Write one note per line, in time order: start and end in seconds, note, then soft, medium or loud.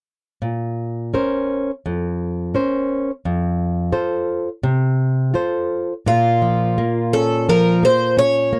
0.42 1.11 A#2 soft
1.14 1.70 C#4 soft
1.14 1.71 A#4 soft
1.14 1.71 C5 soft
1.86 2.53 F2 soft
2.55 3.10 C#4 soft
2.55 3.10 A#4 soft
2.55 3.11 C5 soft
3.25 3.91 F2 soft
3.92 4.48 F4 soft
3.92 4.48 A4 soft
3.92 4.48 C5 soft
4.63 5.33 C3 medium
5.34 5.92 F4 soft
5.34 5.92 A4 soft
5.34 5.93 C5 soft
6.06 8.60 A#2 medium
6.06 7.18 F4 medium
6.42 6.77 F3 soft
6.78 7.13 A#3 soft
7.13 7.48 C#4 soft
7.13 7.49 A4 medium
7.49 7.83 F3 soft
7.49 7.84 A#4 medium
7.83 8.17 A#3 soft
7.83 8.18 C5 medium
8.17 8.52 C#4 soft
8.17 8.60 C#5 medium
8.53 8.60 A#3 soft